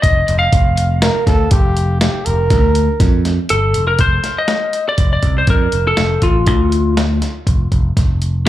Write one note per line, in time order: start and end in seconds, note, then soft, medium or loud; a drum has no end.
0.02 0.22 F1 medium
0.02 0.38 D#5 medium
0.02 kick medium
0.02 closed hi-hat medium
0.28 0.47 F1 medium
0.28 closed hi-hat medium
0.39 3.45 F5 medium
0.53 1.09 F1 loud
0.53 kick loud
0.53 closed hi-hat medium
0.77 closed hi-hat medium
1.02 1.26 A#4 loud
1.02 snare loud
1.02 closed hi-hat medium
1.27 1.46 D2 medium
1.27 1.53 A4 loud
1.27 kick medium
1.27 snare soft
1.27 closed hi-hat medium
1.51 2.08 F1 loud
1.51 2.00 G4 loud
1.51 kick loud
1.51 closed hi-hat medium
1.77 closed hi-hat medium
2.01 2.27 G4 medium
2.01 snare loud
2.01 closed hi-hat medium
2.25 2.52 F1 medium
2.25 3.25 A#4 medium
2.25 closed hi-hat medium
2.50 2.88 D2 medium
2.50 kick loud
2.50 snare soft
2.50 closed hi-hat medium
2.75 closed hi-hat medium
3.00 3.38 F2 medium
3.00 kick loud
3.00 snare soft
3.00 closed hi-hat medium
3.25 snare soft
3.25 closed hi-hat medium
3.49 3.73 G1 medium
3.49 3.87 A4 medium
3.49 closed hi-hat medium
3.74 3.98 F1 medium
3.74 closed hi-hat medium
3.87 4.01 A#4 medium
3.99 4.18 F1 loud
3.99 4.38 C5 loud
3.99 kick loud
3.99 closed hi-hat medium
4.24 snare soft
4.24 closed hi-hat medium
4.38 4.88 D#5 medium
4.48 snare medium
4.48 closed hi-hat medium
4.73 closed hi-hat medium
4.89 5.12 D5 medium
4.98 5.17 F1 medium
4.98 kick medium
4.98 closed hi-hat medium
5.13 5.35 D5 medium
5.23 5.42 C2 medium
5.23 kick medium
5.23 closed hi-hat medium
5.38 5.50 C5 medium
5.47 5.67 F2 medium
5.47 5.87 A#4 medium
5.47 kick loud
5.47 closed hi-hat medium
5.72 5.92 F1 medium
5.72 closed hi-hat medium
5.87 6.25 A4 medium
5.97 6.17 F1 medium
5.97 snare medium
5.97 closed hi-hat medium
6.22 6.47 A1 medium
6.22 6.94 F4 medium
6.22 kick medium
6.22 closed hi-hat medium
6.47 7.22 D2 medium
6.47 kick loud
6.47 closed hi-hat medium
6.72 closed hi-hat medium
6.97 snare medium
6.97 closed hi-hat medium
7.22 snare soft
7.22 closed hi-hat medium
7.47 7.66 F1 medium
7.47 kick medium
7.47 closed hi-hat medium
7.72 7.91 F1 medium
7.72 kick medium
7.72 closed hi-hat medium
7.97 8.49 F1 medium
7.97 kick loud
7.97 snare soft
7.97 closed hi-hat medium
8.22 closed hi-hat medium